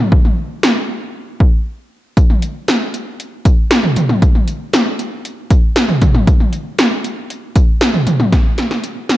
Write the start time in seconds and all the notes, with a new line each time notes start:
0.12 kick
0.25 mid tom
0.63 snare
1.40 kick
2.17 kick, closed hi-hat
2.30 mid tom
2.42 closed hi-hat
2.68 snare, closed hi-hat
2.94 closed hi-hat
3.20 closed hi-hat
3.45 kick, closed hi-hat
3.71 snare, closed hi-hat
3.83 mid tom
3.96 closed hi-hat, mid tom
4.09 mid tom
4.22 kick, closed hi-hat
4.35 mid tom
4.48 closed hi-hat
4.73 snare, closed hi-hat
4.99 closed hi-hat
5.25 closed hi-hat
5.50 kick, closed hi-hat
5.76 snare, closed hi-hat
5.89 mid tom
6.02 kick, closed hi-hat, mid tom
6.15 mid tom
6.27 kick, closed hi-hat
6.40 mid tom
6.53 closed hi-hat
6.78 snare, closed hi-hat
7.04 closed hi-hat
7.30 closed hi-hat
7.56 kick, closed hi-hat
7.81 snare, closed hi-hat
7.94 mid tom
8.07 closed hi-hat, mid tom
8.20 mid tom
8.32 kick, snare, closed hi-hat
8.58 snare, closed hi-hat
8.71 snare
8.84 closed hi-hat
9.09 snare, closed hi-hat